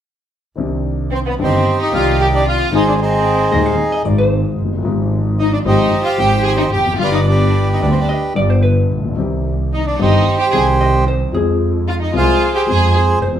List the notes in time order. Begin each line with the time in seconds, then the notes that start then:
0.56 C2 C3 D#3 C4 D4 G4
1.11 C4 C5
1.26 B3 B4
1.39 G1 G2 D#3 C4 D4 G4
1.43 D#4 G4 C5
1.80 D#4 D#5
1.91 C2 C3 D#3 C4 F4 G4 D5 F5
2.20 G4 G5
2.34 D4 D5
2.47 F4 F5
2.71 G#1 G#2 D#3 G#3 C4 D#4 G#4
2.75 G#4 C5 D#5
2.87 D4 D5
3.01 C4 D#4 G#4 C5
3.51 D#1 D#2 D#3 G#3 C4 G#4 D#5
3.66 F5
3.92 D#5
4.03 G#1 G#2 D#3 G#3 C4 D5
4.07 G#4
4.18 C5
4.59 F#1
4.65 F1
4.72 F#1
4.78 G1
4.83 G#1 G#2 F3 G#3 C4 G4 B4
5.39 D#4 D#5
5.52 D4 D5
5.65 G#1 G#2 F3 G#3 C4 D#4 G4 C5 D#5
6.04 F4 F5
6.17 G#1 G#2 F3 G#3 C4 G4 G5
6.21 G4
6.43 G#4 G#5
6.57 D#4 D#5
6.70 G4 G5
6.74 F1
6.80 E2
6.86 F2
6.93 F#2
6.97 G1 G2 D3 G3 B3 F4 G4 F5
7.04 B4 D5
7.12 D#4 D#5
7.25 D4 D5
7.30 G4 B4
7.73 D#4 D#5
7.80 D2 D3 G3 B3 D4 G4 D5
7.90 C4 C5
8.00 D4 D5
8.09 D#5
8.34 G1 G2 D3 G3 B3 G4 D5
8.50 C5
8.63 B4
8.91 A#1
8.97 A1
9.05 A#1
9.11 B1
9.16 C2 C3 D#3 G3 C4 G4
9.73 D#4 D#5
9.86 D4 D5
9.99 G1 G2 D#3 G3 C4 D#4 G4 C5 D#5
10.38 G4 G5
10.51 C2 C3 D#3 G3 C4 G#4
10.55 G4 G#5
10.81 D#5
11.08 C5
11.32 F2 F3 G#3 C4 G#4
11.36 G#4
11.88 F4 F5
12.00 D#4 D#5
12.13 C2 C3 F3 G#3 C4 F4 G#4 F5
12.17 G#4 C5
12.55 G4 G5
12.66 F2 F3 G#3 C4 G#4
12.71 G#5
12.95 G#4
13.22 F1 C5
13.28 E2
13.35 F2